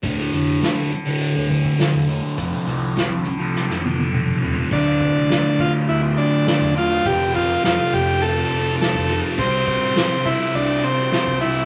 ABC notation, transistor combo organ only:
X:1
M:4/4
L:1/16
Q:1/4=103
K:Dm
V:1 name="Transistor combo organ"
z16 | z16 | D6 F2 E2 D2 D2 F2 | G2 F2 F2 G2 A4 A3 z |
C6 E2 D2 C2 C2 E2 |]